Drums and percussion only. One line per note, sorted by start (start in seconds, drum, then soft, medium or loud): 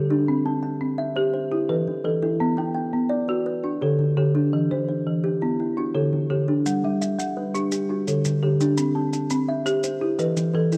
6.66 maracas medium
7.01 maracas medium
7.19 maracas medium
7.55 maracas medium
7.72 maracas medium
8.08 maracas medium
8.25 maracas medium
8.61 maracas medium
8.77 maracas medium
9.13 maracas medium
9.30 maracas medium
9.66 maracas medium
9.83 maracas medium
10.19 maracas medium
10.37 maracas medium
10.72 maracas medium